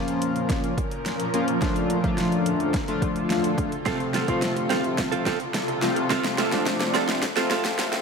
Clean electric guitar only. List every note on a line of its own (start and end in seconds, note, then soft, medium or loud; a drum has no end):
3.86 4.02 C4 medium
3.86 4.00 F4 medium
3.86 3.99 A4 medium
4.00 muted clean electric guitar stroke soft
4.13 4.26 C4 medium
4.13 4.27 F4 medium
4.13 4.26 A4 medium
4.28 4.41 C4 medium
4.28 4.41 F4 medium
4.28 4.40 A4 medium
4.56 muted clean electric guitar stroke medium
4.70 4.86 C4 medium
4.70 4.84 F4 medium
4.70 4.83 A4 medium
4.84 muted clean electric guitar stroke soft
4.98 muted clean electric guitar stroke soft
5.12 5.24 C4 soft
5.12 5.25 F4 medium
5.12 5.24 A4 medium
5.26 5.42 C4 medium
5.26 5.40 F4 loud
5.26 5.39 A4 loud
5.40 muted clean electric guitar stroke soft
5.54 muted clean electric guitar stroke soft
5.68 muted clean electric guitar stroke soft
5.96 muted clean electric guitar stroke soft
6.10 6.26 C4 medium
6.10 6.24 F4 medium
6.10 6.23 A4 medium
6.24 muted clean electric guitar stroke soft
6.38 6.50 C4 medium
6.38 6.51 F4 medium
6.38 6.51 A4 medium
6.52 6.65 C4 medium
6.52 6.65 F4 medium
6.52 6.64 A4 medium
6.80 muted clean electric guitar stroke soft
6.94 7.10 C4 medium
6.94 7.08 F4 medium
6.94 7.07 A4 loud
7.08 muted clean electric guitar stroke soft
7.22 muted clean electric guitar stroke soft
7.36 7.49 C4 soft
7.36 7.49 F4 medium
7.36 7.49 A4 medium
7.50 7.66 C4 medium
7.50 7.64 F4 medium
7.50 7.63 A4 loud
7.78 muted clean electric guitar stroke medium
7.92 muted clean electric guitar stroke soft